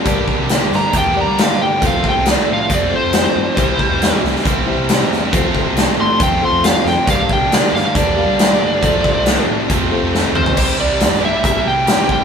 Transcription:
<<
  \new Staff \with { instrumentName = "Lead electric guitar" } { \time 4/4 \key f \major \tempo 4 = 137 r4. bes''8 g''8 bes''8 f''8 g''8 | f''8 g''8 d''8 f''8 d''8 c''4.~ | c''4. r2 r8 | r4. c'''8 g''8 c'''8 f''8 g''8 |
f''8 g''8 d''8 f''8 d''8 d''4.~ | d''4. r2 c''8~ | c''8 d''4 e''8 e''8 g''4 g''8 | }
  \new Staff \with { instrumentName = "Reed electric piano" } { \time 4/4 \key f \major <g' bes' d''>4. r4 <g' bes' d''>4 r8 | <f' a' c''>4. r4 <f' a' c''>4 r8 | <e' g' c''>4. r4 <e' g' c''>4 r8 | <f' a' c''>4. r4 <f' a' c''>4 r8 |
<g' bes' d''>4. r4 <g' bes' f''>4 r8 | <f' a' c''>4. r4 <f' a' c''>4 r8 | r1 | }
  \new Staff \with { instrumentName = "Distorted electric guitar" } { \time 4/4 \key f \major <g bes d' g'>2 <g bes d' g'>2 | <f a c' f'>2 <f a c' f'>2 | <c e g c' e'>2 <c e g c' e'>2 | <f a c' f'>2 <f a c' f'>2 |
<g, d g bes d'>2 <g, d g bes d'>2 | <f, c f a c'>2 <f, c f a c'>2 | <c g c' e' g'>4. <c g c' e' g'>2~ <c g c' e' g'>8 | }
  \new Staff \with { instrumentName = "Overdriven electric guitar" } { \clef bass \time 4/4 \key f \major <g, d g bes d' g'>2 <g, d g bes d' g'>2 | <f, c f a c' f'>2 <f, c f a c' f'>2 | <c e g c' e'>2 <c e g c' e'>2 | <f, c f a c' f'>2 <f, c f a c' f'>2 |
<g, d g bes d' g'>2 <g, d g bes d' g'>2 | <f, c f a c' f'>2 <f, c f a c' f'>2 | <c e g e' g'>4. <c e g e' g'>4. <c e g e' g'>4 | }
  \new Staff \with { instrumentName = "Picked electric bass" } { \clef bass \time 4/4 \key f \major g,8 r16 c8 r16 g,16 r16 e,8. g8. g,8 | f,8 r16 c,8 r16 a,8 f,8 r16 f,8 r16 g,16 r16 | c,8 r16 e,8 r16 c,16 r16 a,,8. c8. e,8 | f,8 r16 c,8 r16 a,8 f,8 r16 f,8 r16 f,16 r16 |
g,8 r16 c8 r16 g,16 r16 e,8. g8. g,8 | f,8 r16 c,8 r16 a,8 f,8 r16 f,8 r16 f,16 r16 | c,8. c,8 g,8 r16 g,16 r16 c8. c,8 r16 | }
  \new DrumStaff \with { instrumentName = "Drums" } \drummode { \time 4/4 <hh bd>8 bd8 <hh sn>8 sn8 <hh bd>4 <hh sn>4 | <hh bd>8 bd8 <hh sn>4 <hh bd>4 <hh sn>4 | <hh bd>8 bd8 <hh sn>8 sn16 sn16 <hh bd>4 <hh sn>8 sn8 | <hh bd>8 bd8 <hh sn>4 <hh bd>4 <hh sn>8 sn8 |
<hh bd>8 bd8 <hh sn>8 sn8 <hh bd>4 <hh sn>4 | <hh bd>8 bd8 <hh sn>4 <hh bd>4 sn8 toml16 tomfh16 | <cymc bd>4 <hh sn>16 sn8. <hh bd>4 <hh sn>8 bd8 | }
>>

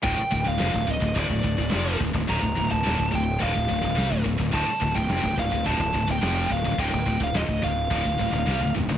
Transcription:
<<
  \new Staff \with { instrumentName = "Lead electric guitar" } { \time 4/4 \key d \phrygian \tempo 4 = 107 g''8. f''8. ees''8 d''4. r8 | bes''8. a''8. g''8 f''4. r8 | a''8. g''8. f''8 a''8. g''8. f''8 | g''8. f''16 ees''8 f''2 r8 | }
  \new Staff \with { instrumentName = "Distorted electric guitar" } { \clef bass \time 4/4 \key d \phrygian <d, a,>16 r16 <d, a,>16 <d, a,>16 <f, c>16 <d, a,>16 <d, a,>16 <d, a,>16 <d, a,>16 <d, a,>16 <d, a,>16 <d, a,>16 <f, c f>8 <d, a,>16 <d, a,>16 | <d, a,>16 <d, a,>16 <d, a,>16 <d, a,>16 <ees, bes,>16 <d, a,>16 <d, a,>8 <d, a,>16 <d, a,>16 <d, a,>16 <d, a,>16 <c g>16 <d, a,>16 <d, a,>16 <d, a,>16 | <d, a,>16 r16 <d, a,>16 <d, a,>16 <f, c>16 <d, a,>16 <d, a,>16 <d, a,>16 <d, a,>16 <d, a,>16 <d, a,>16 <d, a,>16 <f, c f>8 <d, a,>16 <d, a,>16 | <d, a,>16 <d, a,>16 <d, a,>16 <d, a,>16 <ees, bes,>16 <d, a,>16 <d, a,>8 <d, a,>16 <d, a,>16 <d, a,>16 <d, a,>16 <c g>16 <d, a,>16 <d, a,>16 <d, a,>16 | }
  \new Staff \with { instrumentName = "Distorted electric guitar" } { \clef bass \time 4/4 \key d \phrygian <d, a,>16 r16 <d, a,>16 <d, a,>16 <f, c>16 <d, a,>16 <d, a,>16 <d, a,>16 <d, a,>16 <d, a,>16 <d, a,>16 <d, a,>16 <f, c f>8 <d, a,>16 <d, a,>16 | <d, a,>16 <d, a,>16 <d, a,>16 <d, a,>16 <ees, bes,>16 <d, a,>16 <d, a,>8 <d, a,>16 <d, a,>16 <d, a,>16 <d, a,>16 <c g>16 <d, a,>16 <d, a,>16 <d, a,>16 | <d, a,>16 r16 <d, a,>16 <d, a,>16 <f, c>16 <d, a,>16 <d, a,>16 <d, a,>16 <d, a,>16 <d, a,>16 <d, a,>16 <d, a,>16 <f, c f>8 <d, a,>16 <d, a,>16 | <d, a,>16 <d, a,>16 <d, a,>16 <d, a,>16 <ees, bes,>16 <d, a,>16 <d, a,>8 <d, a,>16 <d, a,>16 <d, a,>16 <d, a,>16 <c g>16 <d, a,>16 <d, a,>16 <d, a,>16 | }
  \new Staff \with { instrumentName = "Fingered electric bass" } { \clef bass \time 4/4 \key d \phrygian d,,16 r16 d,,16 d,,16 f,,16 d,,16 d,,16 d,,16 d,,16 d,,16 d,,16 d,,16 f,,8 d,,16 d,,16 | d,,16 d,,16 d,,16 d,,16 ees,,16 d,,16 d,,8 d,,16 d,,16 d,,16 d,,16 c,16 d,,16 d,,16 d,,16 | d,,16 r16 d,,16 d,,16 f,,16 d,,16 d,,16 d,,16 d,,16 d,,16 d,,16 d,,16 f,,8 d,,16 d,,16 | d,,16 d,,16 d,,16 d,,16 ees,,16 d,,16 d,,8 d,,16 d,,16 d,,16 d,,16 c,16 d,,16 d,,16 d,,16 | }
  \new DrumStaff \with { instrumentName = "Drums" } \drummode { \time 4/4 <bd cymr>8 <bd cymr>16 bd16 <cymr sn>16 bd16 <bd cymr>16 bd16 <bd cymr>16 bd16 <bd cymr>16 bd16 <cymr sn>8 <bd cymr>16 bd16 | <bd cymr>16 bd16 <bd cymr>16 bd16 <cymr sn>16 bd16 <bd cymr>8 <bd cymr>16 bd16 <bd cymr>16 bd16 <cymr sn>16 bd16 <bd cymr sn>16 bd16 | <cymc bd>8 <bd cymr>16 bd16 <cymr sn>16 bd16 <bd cymr>16 bd16 <bd cymr>16 bd16 <bd cymr>16 bd16 <cymr sn>8 <bd cymr sn>16 bd16 | <bd cymr>16 bd16 <bd cymr>16 bd16 <cymr sn>16 bd16 <bd cymr>8 <bd cymr>16 bd16 <bd cymr>8 sn16 tommh16 toml16 tomfh16 | }
>>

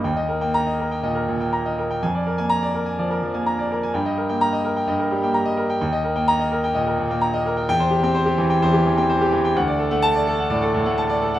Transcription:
<<
  \new Staff \with { instrumentName = "Grand piano" } { \time 4/4 \key ees \major \tempo 4 = 127 << { r4 bes''8 r2 r8 | r4 bes''8 r2 r8 | r4 bes''8 r2 r8 | r4 bes''8 r2 r8 |
\key c \lydian g''8 r2. r8 | r4 a''8 r2 r8 | } \\ { g''16 ees''16 bes'16 g''8 ees''16 bes'16 g''16 ees''16 bes'16 bes,16 g''16 bes''16 ees''16 bes'16 g''16 | aes''16 d''16 bes'16 aes''8 d''16 bes'16 aes''16 d''16 bes'16 f16 aes''16 bes''16 d''16 bes'16 aes''16 | g''16 ees''16 bes'16 g''8 ees''16 bes'16 g''16 ees''16 bes'16 g16 g''16 bes''16 ees''16 bes'16 g''16 | g''16 ees''16 bes'16 g''8 ees''16 bes'16 g''16 ees''16 bes'16 bes,16 g''16 bes''16 ees''16 bes'16 g''16 |
r16 c''16 g'16 g''16 c''16 g'16 e16 g''16 c''16 g'16 e16 g''16 c''16 g'16 e16 g''16 | fis''16 d''16 a'16 fis''8 d''16 a'16 fis''16 d''16 a'16 a,16 fis''16 a''16 d''16 a'16 fis''16 | } >> }
  \new Staff \with { instrumentName = "Grand piano" } { \clef bass \time 4/4 \key ees \major ees,8. bes8 r8. bes,8 r16 bes8 r8. | f,8. bes8 r8. f8 r16 bes8 r8. | g,8. bes8 r8. g,8. bes8 r8. | ees,8. bes8 r8. bes,8 r16 bes8 r8. |
\key c \lydian e,8. c'8 r8. e,8. c'8 r8. | d,8. a8 r8. a,8 r16 a8 r8. | }
>>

